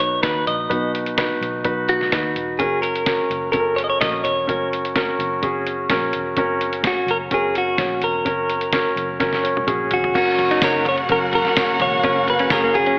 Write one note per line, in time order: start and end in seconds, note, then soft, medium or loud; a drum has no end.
0.00 0.20 B1 medium
0.00 0.70 B2 medium
0.00 0.22 D#4 medium
0.00 0.23 F#4 medium
0.00 0.23 B4 medium
0.00 0.22 C#5 medium
0.00 closed hi-hat medium
0.22 0.45 D#2 medium
0.22 0.61 D#4 medium
0.22 0.61 F#4 medium
0.22 0.47 B4 medium
0.22 0.61 B4 medium
0.22 kick medium
0.22 snare medium
0.22 closed hi-hat medium
0.47 0.69 A#1 medium
0.47 0.91 D#5 medium
0.47 closed hi-hat medium
0.70 1.38 B1 medium
0.70 1.37 B2 medium
0.70 1.08 D#4 medium
0.70 1.08 F#4 medium
0.70 1.08 B4 medium
0.70 kick medium
0.70 closed hi-hat medium
0.95 closed hi-hat medium
1.06 closed hi-hat soft
1.17 1.55 D#4 medium
1.17 1.56 F#4 medium
1.17 1.56 B4 medium
1.17 kick medium
1.17 snare medium
1.17 closed hi-hat medium
1.41 1.63 B1 medium
1.41 closed hi-hat soft
1.64 2.09 B1 medium
1.64 2.03 D#4 medium
1.64 2.03 F#4 medium
1.64 2.03 B4 medium
1.64 kick medium
1.64 closed hi-hat medium
1.89 2.62 F#4 medium
1.89 closed hi-hat medium
2.01 snare soft
2.12 2.34 D#2 medium
2.12 2.50 D#4 medium
2.12 2.50 F#4 medium
2.12 2.50 B4 medium
2.12 kick medium
2.12 snare medium
2.12 closed hi-hat medium
2.36 2.58 E1 medium
2.36 closed hi-hat medium
2.59 3.27 F#1 medium
2.59 2.97 C#4 medium
2.59 2.97 F#4 medium
2.59 2.82 G#4 medium
2.59 2.98 A#4 medium
2.59 kick medium
2.59 closed hi-hat medium
2.82 3.50 A#4 medium
2.82 closed hi-hat medium
2.96 closed hi-hat soft
3.06 3.44 C#4 medium
3.06 3.44 F#4 medium
3.06 3.45 A#4 medium
3.06 kick medium
3.06 snare medium
3.06 closed hi-hat medium
3.30 3.52 F#1 medium
3.30 closed hi-hat soft
3.52 3.98 F#1 medium
3.52 3.91 C#4 medium
3.52 3.92 F#4 medium
3.52 3.60 A4 medium
3.52 3.77 A#4 medium
3.52 kick medium
3.52 closed hi-hat medium
3.59 3.95 A#4 medium
3.76 3.83 C#5 medium
3.76 closed hi-hat medium
3.84 3.89 D#5 medium
3.90 4.00 C#5 medium
4.00 4.23 A#1 medium
4.00 4.39 C#4 medium
4.00 4.39 F#4 medium
4.00 4.39 A#4 medium
4.00 4.24 D#5 medium
4.00 kick medium
4.00 snare medium
4.00 closed hi-hat medium
4.24 4.47 E1 medium
4.24 4.68 C#5 medium
4.24 closed hi-hat medium
4.47 5.16 F#1 medium
4.47 4.86 C#4 medium
4.47 4.86 F#4 medium
4.47 4.86 A#4 medium
4.47 kick medium
4.47 closed hi-hat medium
4.73 closed hi-hat medium
4.85 closed hi-hat soft
4.95 5.33 C#4 medium
4.95 5.34 F#4 medium
4.95 5.34 A#4 medium
4.95 kick medium
4.95 snare medium
4.95 closed hi-hat medium
5.19 5.41 F#1 medium
5.19 closed hi-hat medium
5.42 5.87 F#1 medium
5.42 5.80 C#4 medium
5.42 5.81 F#4 medium
5.42 5.81 G#4 medium
5.42 kick loud
5.42 closed hi-hat medium
5.67 closed hi-hat medium
5.90 6.12 A#1 medium
5.90 6.28 C#4 medium
5.90 6.28 F#4 medium
5.90 6.28 A#4 medium
5.90 kick medium
5.90 snare medium
5.90 closed hi-hat medium
6.13 6.36 E1 medium
6.13 closed hi-hat medium
6.37 7.05 F#1 medium
6.37 6.75 C#4 medium
6.37 6.75 F#4 medium
6.37 6.76 A#4 medium
6.37 kick loud
6.37 closed hi-hat medium
6.61 closed hi-hat medium
6.73 closed hi-hat medium
6.83 7.22 C#4 medium
6.83 7.22 F#4 medium
6.83 7.22 C#5 medium
6.83 kick medium
6.83 snare medium
6.83 closed hi-hat medium
6.87 7.10 F#4 medium
7.07 7.29 F#1 medium
7.07 7.17 A#4 medium
7.07 closed hi-hat medium
7.31 7.75 F#1 medium
7.31 7.69 C#4 medium
7.31 7.70 F#4 medium
7.31 7.57 G#4 medium
7.31 7.70 A#4 medium
7.31 kick medium
7.31 closed hi-hat medium
7.55 8.05 F#4 medium
7.55 closed hi-hat medium
7.78 8.01 A#1 medium
7.78 8.16 C#4 medium
7.78 8.16 F#4 medium
7.78 8.17 C#5 medium
7.78 kick medium
7.78 snare medium
7.78 closed hi-hat medium
8.01 8.24 E1 medium
8.01 9.88 A#4 medium
8.01 closed hi-hat medium
8.25 8.93 F#1 medium
8.25 8.63 C#4 medium
8.25 8.64 F#4 medium
8.25 8.64 A#4 medium
8.25 kick loud
8.25 closed hi-hat medium
8.50 closed hi-hat medium
8.61 closed hi-hat soft
8.73 9.11 C#4 medium
8.73 9.11 F#4 medium
8.73 9.11 A#4 medium
8.73 kick medium
8.73 snare medium
8.73 closed hi-hat medium
8.96 9.19 F#1 medium
8.96 closed hi-hat medium
9.20 9.65 F#1 medium
9.20 9.58 C#4 medium
9.20 9.58 F#4 medium
9.20 9.58 A#4 medium
9.20 kick loud
9.20 snare soft
9.20 closed hi-hat medium
9.33 snare soft
9.44 9.66 C#5 medium
9.44 closed hi-hat medium
9.57 high tom medium
9.67 9.90 A#1 medium
9.67 10.05 C#4 medium
9.67 10.06 F#4 medium
9.67 10.06 G#4 medium
9.67 10.12 G#5 medium
9.67 kick medium
9.67 closed hi-hat medium
9.67 mid tom medium
9.91 10.13 E1 medium
9.91 10.16 F#4 medium
9.91 closed hi-hat medium
9.91 floor tom medium
10.04 floor tom medium
10.14 10.59 F#1 medium
10.14 12.99 C#3 medium
10.14 12.99 F#3 medium
10.14 12.99 A#3 medium
10.14 10.53 C#4 medium
10.14 12.99 F#4 medium
10.14 10.53 F#4 medium
10.14 10.27 F#4 medium
10.14 10.53 A#4 medium
10.14 12.99 F#5 medium
10.14 kick loud
10.14 crash medium
10.14 ride medium
10.18 10.65 F#4 medium
10.38 floor tom medium
10.38 ride medium
10.51 10.84 D#4 medium
10.51 ride soft
10.62 11.06 F#1 loud
10.62 11.00 C#4 medium
10.62 11.00 F#4 medium
10.62 10.88 A#4 medium
10.62 11.01 C#5 medium
10.62 kick loud
10.62 snare medium
10.62 ride medium
10.62 tambourine medium
10.85 10.95 C#5 medium
10.85 floor tom medium
10.85 ride soft
10.98 ride soft
11.09 11.77 F#1 medium
11.09 11.47 C#4 medium
11.09 11.47 F#4 medium
11.09 11.48 A#4 medium
11.09 11.18 A#4 medium
11.09 kick loud
11.09 ride medium
11.33 11.81 A#4 medium
11.33 floor tom medium
11.33 ride medium
11.45 snare soft
11.57 11.94 C#4 medium
11.57 11.95 F#4 medium
11.57 11.95 A#4 medium
11.57 kick loud
11.57 snare loud
11.57 ride medium
11.57 tambourine medium
11.80 12.02 E1 medium
11.80 12.29 C#5 medium
11.80 floor tom medium
11.80 ride medium
12.03 12.48 F#1 medium
12.03 12.41 C#4 medium
12.03 12.15 C#4 loud
12.03 12.41 F#4 medium
12.03 12.42 A#4 medium
12.03 kick loud
12.03 ride medium
12.28 12.52 B4 medium
12.28 floor tom medium
12.28 ride medium
12.39 12.51 C#4 medium
12.39 ride soft
12.50 12.95 F#1 loud
12.50 12.88 C#4 medium
12.50 12.89 F#4 medium
12.50 12.89 G#4 medium
12.50 12.76 A#4 medium
12.50 kick loud
12.50 snare loud
12.50 ride medium
12.50 tambourine medium
12.64 12.75 A#3 medium
12.74 12.97 G#4 medium
12.74 floor tom medium
12.74 ride medium
12.86 12.98 C#4 medium
12.86 ride soft